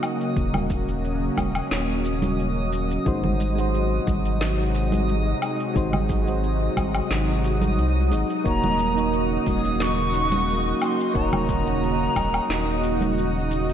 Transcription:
0.00 3.02 C#3 medium
0.00 13.73 F#3 medium
0.00 3.02 A#3 medium
0.00 0.34 D#4 medium
0.00 3.02 F#4 medium
0.00 13.73 D#5 medium
0.00 13.73 D#6 medium
0.00 open hi-hat medium
0.00 low woodblock medium
0.00 shaker medium
0.21 shaker soft
0.36 1.30 D#1 loud
0.36 3.03 C#4 medium
0.36 kick loud
0.36 shaker soft
0.54 high conga medium
0.54 low conga medium
0.54 low woodblock medium
0.70 kick medium
0.70 open hi-hat medium
0.70 shaker medium
0.88 shaker soft
1.04 shaker soft
1.37 1.62 D#1 medium
1.37 kick medium
1.37 open hi-hat medium
1.37 high conga medium
1.37 low woodblock medium
1.37 shaker medium
1.55 low woodblock medium
1.55 shaker soft
1.71 2.98 D#1 medium
1.71 snare medium
1.71 shaker soft
2.05 open hi-hat medium
2.05 shaker medium
2.22 high conga medium
2.22 shaker soft
2.39 shaker soft
2.73 open hi-hat medium
2.73 shaker medium
2.91 shaker soft
3.05 4.00 G#1 medium
3.05 8.41 C3 medium
3.05 3.53 G#3 medium
3.05 8.42 G#3 medium
3.05 3.53 D#4 medium
3.05 13.73 D#4 medium
3.05 13.73 F#4 medium
3.05 3.54 F#4 medium
3.05 3.54 C5 medium
3.05 kick loud
3.05 shaker soft
3.23 high conga medium
3.23 low conga medium
3.40 open hi-hat medium
3.40 shaker medium
3.55 5.71 G#3 medium
3.55 5.72 D#4 medium
3.55 5.73 F#4 medium
3.55 shaker soft
3.60 5.73 C5 medium
3.74 shaker soft
4.07 5.34 G#1 medium
4.07 kick loud
4.07 open hi-hat medium
4.07 high conga medium
4.07 shaker medium
4.25 shaker soft
4.41 snare medium
4.41 shaker soft
4.75 open hi-hat medium
4.75 shaker medium
4.92 high conga medium
4.92 shaker soft
5.09 shaker soft
5.42 open hi-hat medium
5.42 low woodblock medium
5.42 shaker medium
5.60 shaker soft
5.74 6.69 G#1 medium
5.74 6.22 G#3 medium
5.74 6.23 D#4 medium
5.74 6.23 F#4 medium
5.74 6.24 C5 loud
5.74 kick loud
5.74 shaker soft
5.93 high conga medium
5.93 low conga medium
5.93 low woodblock medium
6.09 kick loud
6.09 open hi-hat medium
6.09 shaker medium
6.24 8.07 G#3 medium
6.24 8.08 D#4 medium
6.24 8.09 F#4 medium
6.24 shaker soft
6.29 8.10 C5 medium
6.44 shaker soft
6.77 7.01 G#1 medium
6.77 kick medium
6.77 open hi-hat medium
6.77 high conga medium
6.77 low woodblock medium
6.77 shaker medium
6.95 low woodblock medium
6.95 shaker soft
7.11 7.80 G#1 medium
7.11 snare medium
7.11 shaker soft
7.44 open hi-hat medium
7.44 shaker medium
7.62 high conga medium
7.62 shaker soft
7.78 8.13 C2 loud
7.78 shaker soft
8.11 8.24 G#1 medium
8.11 8.22 G#3 medium
8.11 8.23 D#4 medium
8.11 8.23 F#4 medium
8.11 8.24 D#5 medium
8.11 open hi-hat medium
8.11 shaker medium
8.30 shaker soft
8.44 9.39 D#1 medium
8.44 13.73 C#3 medium
8.44 8.92 A#3 medium
8.44 13.73 A#3 medium
8.44 8.92 D#4 medium
8.44 8.93 F#4 medium
8.44 8.93 C#5 loud
8.44 9.09 A#5 loud
8.44 kick loud
8.44 shaker soft
8.63 high conga medium
8.63 low conga medium
8.79 open hi-hat medium
8.79 shaker medium
8.94 11.10 A#3 medium
8.94 11.11 D#4 medium
8.94 11.12 F#4 medium
8.94 shaker soft
8.99 11.13 C#5 medium
9.13 shaker soft
9.47 10.74 D#1 medium
9.47 9.83 D#6 loud
9.47 kick medium
9.47 open hi-hat medium
9.47 high conga medium
9.47 shaker medium
9.65 shaker soft
9.80 10.82 C#6 loud
9.80 snare medium
9.80 shaker soft
10.14 open hi-hat medium
10.14 shaker medium
10.32 high conga medium
10.32 shaker soft
10.48 shaker soft
10.82 11.13 C6 medium
10.82 open hi-hat medium
10.82 low woodblock medium
10.82 shaker medium
11.00 shaker soft
11.14 12.09 D#1 loud
11.14 11.62 A#3 medium
11.14 11.62 D#4 medium
11.14 11.62 F#4 medium
11.14 11.63 C#5 loud
11.14 13.14 A#5 loud
11.14 kick loud
11.14 shaker soft
11.33 high conga medium
11.33 low conga medium
11.33 low woodblock medium
11.49 kick medium
11.49 open hi-hat medium
11.49 shaker medium
11.64 13.73 A#3 medium
11.64 13.73 D#4 medium
11.64 13.73 F#4 medium
11.64 shaker soft
11.69 13.73 C#5 medium
11.83 shaker soft
12.16 12.40 D#1 medium
12.16 kick medium
12.16 open hi-hat medium
12.16 high conga medium
12.16 low woodblock medium
12.16 shaker medium
12.34 low woodblock medium
12.34 shaker soft
12.50 13.73 D#1 medium
12.50 snare medium
12.50 shaker soft
12.84 open hi-hat medium
12.84 shaker medium
13.01 high conga medium
13.01 shaker soft
13.18 shaker soft
13.51 open hi-hat medium
13.51 shaker medium
13.69 shaker soft

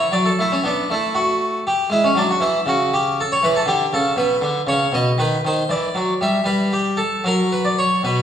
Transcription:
0.00 0.13 C#5 loud
0.12 0.31 F#3 medium
0.12 0.26 D5 loud
0.25 0.39 A4 medium
0.39 0.58 A3 medium
0.39 0.53 E4 loud
0.52 0.65 C#4 medium
0.64 0.83 B3 medium
0.64 0.87 D4 loud
0.90 1.63 A3 medium
0.90 1.16 E4 medium
1.15 1.58 F#4 loud
1.67 1.88 G4 loud
1.90 2.08 G#3 medium
1.90 2.04 E4 loud
2.04 2.16 C#4 medium
2.15 2.33 F#3 medium
2.15 2.29 D4 loud
2.31 2.42 F#4 medium
2.40 2.59 E3 medium
2.40 2.67 E4 loud
2.66 3.21 C#3 medium
2.66 2.93 F#4 loud
2.94 3.18 G4 loud
3.21 3.31 A4 loud
3.32 3.43 C#5 medium
3.43 3.61 E3 medium
3.43 3.56 B4 loud
3.56 3.68 A4 medium
3.66 3.84 D3 medium
3.66 3.93 G4 loud
3.93 4.11 C#3 medium
3.93 4.14 A4 loud
4.16 4.34 B2 medium
4.16 4.60 B4 loud
4.42 4.60 D3 medium
4.67 4.85 C#3 medium
4.67 4.93 C#5 loud
4.92 5.10 B2 medium
4.92 5.18 D#5 loud
5.18 5.36 D#3 medium
5.18 5.40 B4 loud
5.45 5.62 D#3 medium
5.45 5.69 C5 loud
5.69 5.87 E3 medium
5.69 6.19 D5 loud
5.95 6.12 F#3 medium
6.21 6.38 G3 medium
6.21 6.42 E5 loud
6.44 7.00 G3 medium
6.44 6.70 B4 loud
6.73 6.97 G4 loud
6.97 7.22 A4 loud
7.24 7.81 F#3 medium
7.24 7.50 A#4 loud
7.52 7.64 B4 loud
7.65 7.77 D5 medium
7.78 8.00 C#5 medium
8.03 8.22 B2 medium
8.03 8.22 B4 medium

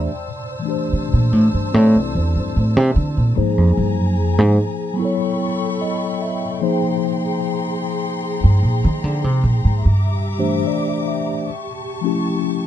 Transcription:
0.00 0.12 E3 soft
0.00 0.12 A3 soft
0.00 0.12 D4 soft
0.00 0.10 G4 soft
0.00 0.11 C5 soft
0.00 0.26 D5 soft
0.00 0.11 E5 soft
0.11 3.34 C5 soft
0.11 3.34 A5 soft
0.11 3.34 E6 medium
0.59 3.34 E3 soft
0.59 3.36 A3 soft
0.65 3.37 D4 soft
0.65 3.39 G4 soft
0.70 3.36 C5 soft
0.93 1.13 C3 soft
1.13 1.33 A#2 medium
1.33 1.53 A2 medium
1.54 1.74 G2 soft
1.72 1.95 A2 medium
1.72 3.36 C4 soft
1.72 3.36 E4 soft
1.72 3.37 A4 soft
1.72 3.37 D5 soft
1.95 2.15 C2 soft
2.15 2.35 E2 medium
2.36 2.52 G2 soft
2.56 2.77 A2 medium
2.77 2.95 C3 medium
2.96 3.16 D3 medium
3.17 3.33 A#2 medium
3.36 3.58 G#2 soft
3.36 4.98 F3 soft
3.36 4.98 A#3 soft
3.36 4.99 D#4 soft
3.36 4.97 G#4 medium
3.36 4.99 G#4 soft
3.36 4.99 C5 soft
3.36 4.97 G#5 medium
3.36 4.97 A#5 medium
3.58 3.77 F2 soft
3.77 3.98 G2 medium
3.98 4.19 F#2 soft
4.19 4.38 F2 medium
4.38 4.56 G#2 medium
4.94 6.58 F#3 soft
4.94 6.59 B3 soft
4.98 6.61 E4 soft
4.98 6.59 A4 medium
4.98 6.62 A4 soft
4.98 9.80 G5 medium
4.98 6.58 B5 medium
4.98 6.59 C#6 medium
5.05 6.64 C#5 soft
5.81 6.44 D#5 soft
6.21 6.77 E5 soft
6.60 9.85 F3 soft
6.60 9.85 A#3 soft
6.60 9.86 D#4 soft
6.60 9.81 G#4 medium
6.60 9.86 G#4 soft
6.60 9.86 C5 soft
6.60 11.44 A#5 medium
6.60 9.81 C6 medium
8.44 8.62 G2 medium
8.63 8.82 A#2 medium
8.84 9.04 D#3 medium
9.04 9.24 D3 medium
9.24 9.43 C3 medium
9.44 9.63 A#2 medium
9.65 9.81 G#2 medium
9.84 10.62 G2 medium
9.84 12.67 G4 medium
9.84 11.47 E5 medium
9.84 11.47 D6 medium
10.38 11.48 E3 soft
10.38 11.49 A3 soft
10.38 11.49 D4 soft
10.38 11.49 G4 soft
10.38 11.49 C5 soft
10.67 11.31 D5 soft
11.08 11.65 E5 soft
11.50 12.67 A5 medium
11.50 12.67 C#6 medium
12.01 12.67 F3 soft
12.01 12.67 A3 soft
12.01 12.67 C#4 soft
12.01 12.67 E4 soft
12.07 12.67 G4 soft

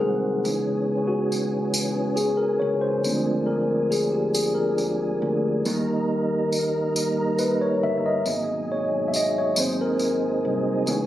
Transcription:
0.00 0.42 C2 medium
0.00 0.47 D#3 medium
0.00 0.41 F#3 soft
0.00 0.46 G#3 medium
0.00 0.42 A#3 soft
0.00 0.42 C4 medium
0.00 0.46 C4 soft
0.00 0.46 F#4 medium
0.00 1.13 G#4 medium
0.00 0.48 A#4 medium
0.00 0.48 C5 medium
0.44 2.58 C#2 medium
0.44 1.71 E3 soft
0.44 3.02 E3 medium
0.44 1.72 B3 soft
0.44 3.02 B3 medium
0.44 3.02 C#4 medium
0.44 1.72 D#4 medium
0.44 3.02 G#4 medium
0.44 tambourine soft
1.08 1.92 F#4 medium
1.32 tambourine soft
1.74 tambourine medium
2.16 2.38 G#4 medium
2.16 tambourine soft
2.37 2.61 A#4 medium
2.60 3.02 C#2 medium
2.60 2.70 C#5 medium
2.81 3.50 C5 medium
3.04 5.18 D2 medium
3.04 5.62 F3 medium
3.04 3.63 G#3 soft
3.04 5.62 A#3 medium
3.04 3.63 C4 soft
3.04 3.13 C#4 soft
3.04 3.64 D4 medium
3.04 5.62 G#4 medium
3.04 tambourine soft
3.13 5.66 D4 medium
3.47 3.88 A#4 medium
3.91 4.12 G#4 medium
3.91 tambourine medium
4.12 4.36 G4 medium
4.34 4.55 G#4 medium
4.34 tambourine medium
4.54 5.39 A#4 medium
4.78 tambourine soft
5.22 5.62 D2 medium
5.64 7.79 D#2 medium
5.64 6.91 G3 soft
5.64 8.23 G3 medium
5.64 6.92 A#3 soft
5.64 8.23 A#3 medium
5.64 6.92 D#4 medium
5.64 8.23 D#4 medium
5.64 5.73 A4 medium
5.64 tambourine soft
5.72 8.26 A#4 medium
6.52 tambourine soft
6.96 tambourine medium
7.39 7.60 B4 medium
7.39 tambourine soft
7.61 7.84 C#5 medium
7.83 8.23 G1 medium
7.83 7.96 E5 loud
7.98 8.05 E5 medium
8.06 8.67 D#5 medium
8.25 9.53 G#1 loud
8.25 8.84 F#3 soft
8.25 9.58 F#3 medium
8.25 8.84 A#3 soft
8.25 8.34 A#3 soft
8.25 8.84 B3 medium
8.25 9.58 D#4 medium
8.25 9.58 G#4 medium
8.25 tambourine soft
8.35 9.61 B2 soft
8.72 9.10 C#5 medium
9.08 9.14 E5 medium
9.14 9.37 D#5 medium
9.14 tambourine medium
9.38 9.59 C#5 medium
9.56 10.40 G#1 medium
9.56 10.15 F#3 medium
9.56 10.89 F#3 medium
9.56 10.15 A#3 soft
9.56 10.16 C4 medium
9.56 10.89 C4 medium
9.56 10.89 D#4 medium
9.56 10.88 G#4 medium
9.56 9.81 C5 medium
9.56 tambourine medium
9.81 10.63 A#4 medium
9.99 tambourine soft
10.45 10.85 C2 medium
10.87 11.06 C#2 loud
10.87 11.06 E3 soft
10.87 11.06 E3 medium
10.87 11.06 B3 soft
10.87 11.06 B3 medium
10.87 11.06 C#4 medium
10.87 11.06 D#4 medium
10.87 11.06 G#4 medium
10.87 tambourine soft

